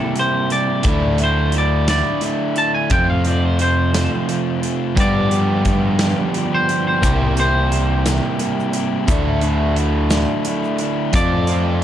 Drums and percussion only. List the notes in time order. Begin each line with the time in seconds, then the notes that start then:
0.16 closed hi-hat
0.50 closed hi-hat
0.83 kick, closed hi-hat
1.18 closed hi-hat
1.52 closed hi-hat
1.88 snare, closed hi-hat
2.21 closed hi-hat
2.56 closed hi-hat
2.90 kick, closed hi-hat
3.25 closed hi-hat
3.59 closed hi-hat
3.94 snare, closed hi-hat
4.29 closed hi-hat
4.63 closed hi-hat
4.97 kick, closed hi-hat
5.31 closed hi-hat
5.65 kick, closed hi-hat
5.99 snare, closed hi-hat
6.34 closed hi-hat
6.69 closed hi-hat
7.03 kick, closed hi-hat, shaker
7.37 closed hi-hat
7.72 closed hi-hat
8.06 snare, closed hi-hat, shaker
8.39 closed hi-hat, shaker
8.60 shaker
8.73 closed hi-hat
9.08 kick, closed hi-hat, shaker
9.41 closed hi-hat
9.76 closed hi-hat
10.10 snare, closed hi-hat, shaker
10.45 closed hi-hat, shaker
10.64 shaker
10.78 closed hi-hat
11.13 kick, closed hi-hat, shaker
11.47 closed hi-hat